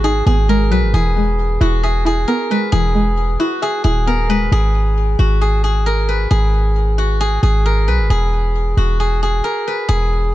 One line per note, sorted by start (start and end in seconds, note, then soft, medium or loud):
0.00 0.22 G#1 loud
0.00 0.26 G#2 loud
0.00 0.49 F#3 medium
0.00 0.26 B3 loud
0.00 0.94 D#4 medium
0.00 1.61 F#4 medium
0.00 0.55 B4 medium
0.04 0.26 G#4 loud
0.26 0.73 G#1 loud
0.26 0.94 B3 medium
0.26 0.93 G#4 medium
0.49 0.94 G#3 loud
0.49 0.77 A#4 medium
0.71 0.84 B1 loud
0.71 0.94 F#3 medium
0.71 2.34 B4 medium
0.82 0.93 G#1 loud
0.94 1.58 E1 loud
0.94 2.06 E3 medium
0.94 1.83 G#4 loud
1.16 2.28 G#3 medium
1.61 2.25 E1 loud
1.61 2.04 E4 loud
1.61 3.39 F#4 medium
1.83 2.06 G#4 medium
1.83 2.95 E5 medium
2.05 3.17 E4 medium
2.05 2.72 G#4 medium
2.28 3.40 B3 medium
2.28 2.57 A#4 medium
2.51 2.94 G#3 medium
2.51 4.13 B4 medium
2.72 3.37 E1 loud
2.72 3.85 E3 medium
2.72 3.62 G#4 loud
2.95 4.07 G#3 medium
3.40 3.83 E4 loud
3.40 5.19 F#4 medium
3.62 3.84 G#4 medium
3.62 4.52 E5 medium
3.84 4.49 D#1 loud
3.84 4.52 E4 medium
3.84 4.52 G#4 medium
4.07 4.52 B3 medium
4.07 4.36 A#4 medium
4.29 4.52 G#3 medium
4.29 5.92 B4 medium
4.52 5.16 G#1 loud
4.52 5.41 G#4 medium
5.19 6.27 G#1 loud
5.19 6.98 F#4 medium
5.41 5.63 G#4 medium
5.64 6.30 G#4 medium
5.86 6.15 A#4 medium
6.09 7.72 B4 medium
6.31 7.39 G#1 loud
6.31 7.20 G#4 medium
6.98 8.77 F#4 medium
7.21 7.42 G#4 medium
7.43 7.89 G#1 loud
7.43 8.10 G#4 medium
7.66 7.94 A#4 medium
7.88 8.00 B1 loud
7.88 9.50 B4 medium
7.99 8.09 G#1 loud
8.10 8.74 E1 loud
8.10 8.99 G#4 loud
8.77 9.42 E1 loud
8.77 10.35 F#4 medium
9.00 9.22 G#4 medium
9.23 9.88 G#4 medium
9.44 9.73 A#4 medium
9.68 10.35 B4 medium
9.89 10.35 E1 loud
9.89 10.35 G#4 loud